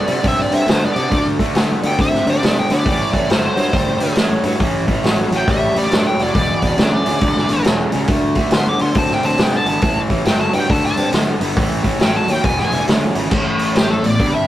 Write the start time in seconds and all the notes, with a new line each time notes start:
Already playing: D5
0.06 C3 D3 B3, open hi-hat
0.23 C2 D3 C4, kick, open hi-hat
0.28 E5
0.41 D5
0.50 G2 D3 C4 E5, open hi-hat
0.67 D2 D3 B3 C5, snare, open hi-hat
0.84 D5
0.95 C3 D3 B3, open hi-hat
1.10 D2 D3 A3, kick, open hi-hat
1.39 D3 A3, kick, open hi-hat
1.55 D2 D3 B3, snare, open hi-hat
1.83 D2 D3 B3 G5, open hi-hat
1.99 D2 D3 C4 E5, kick, open hi-hat
2.15 snare
2.27 D2 D3 C4 D5, open hi-hat
2.42 C3 D3 B3, snare, open hi-hat
2.59 G5
2.69 D2 D3 B3 D5, open hi-hat
2.86 A1 A2 E3, kick, open hi-hat
3.13 A1 A2 E3, kick, open hi-hat
3.29 G1 A2 F#3 C5, snare, open hi-hat
3.56 G2 A2 F#3, open hi-hat
3.73 G1 A2 G3, kick, open hi-hat
4.00 D2 A2 G3, open hi-hat
4.15 A1 A2 F#3, snare, open hi-hat
4.44 G2 A2 F#3, open hi-hat
4.60 A1 A2 E3, kick, open hi-hat
4.87 A2 E3, kick, open hi-hat
5.04 A1 A2 F#3, snare, open hi-hat
5.31 A1 A2 F#3, open hi-hat
5.37 G5
5.48 A1 A2 G3 E5, kick, open hi-hat
5.75 A1 A2 G3 D5, open hi-hat
5.92 G2 A2 F#3, snare, open hi-hat
6.07 G5
6.19 F1 A2 F#3 D5, open hi-hat
6.35 E1 E2 B2, kick, open hi-hat
6.62 E1 E2 B2, kick, open hi-hat
6.78 D2 E2 C#3 D5, snare, open hi-hat
7.05 D2 E2 C#3, open hi-hat
7.20 D2 E2 D3, kick, open hi-hat
7.37 snare
7.49 G#1 E2 D3, open hi-hat
7.64 E1 E2 C#3, snare, open hi-hat
7.92 C#2 E2 C#3, open hi-hat
8.08 D2 D3 A3, kick, open hi-hat
8.35 D3 A3, kick, open hi-hat
8.51 D2 D3 B3 C6, snare, open hi-hat
8.69 D6
8.79 D2 D3 B3 C6, open hi-hat
8.95 D2 D3 C4 A5, kick, open hi-hat
9.10 G5, snare
9.23 D2 D3 C4 A5, open hi-hat
9.38 C3 D3 B3, snare, open hi-hat
9.42 G5
9.57 A5
9.66 G#1 D3 B3, open hi-hat
9.82 A1 A2 E3, kick, open hi-hat
10.10 A1 A2 E3, kick, open hi-hat
10.25 G1 A2 F#3 G5, snare, open hi-hat
10.41 A5
10.53 G2 A2 F#3 G5, open hi-hat
10.69 D2 D3 A3 A5, kick, open hi-hat
10.85 A5, snare
10.97 G2 D3 C4, open hi-hat
11.13 D2 D3 B3, snare, open hi-hat
11.41 G1 D3 B3, open hi-hat
11.56 A1 A2 E3, kick, open hi-hat
11.84 A2 E3, kick, open hi-hat
11.99 A1 A2 F#3 G5, snare, open hi-hat
12.17 A5
12.28 D#2 A2 F#3 G5, open hi-hat
12.44 E1 E2 B2 G#5, kick, open hi-hat
12.60 G#5, snare
12.71 E1 E2 D3, open hi-hat
12.88 D2 E2 C#3, snare, open hi-hat
13.15 G#1 E2 C#3, open hi-hat
13.31 A1 A2, kick, crash
13.59 open hi-hat
13.76 E3 G4, snare, open hi-hat
13.90 F3 A4
14.03 A1 A2 B3 D5, open hi-hat
14.20 G1 G2, kick, open hi-hat
14.33 C4 E5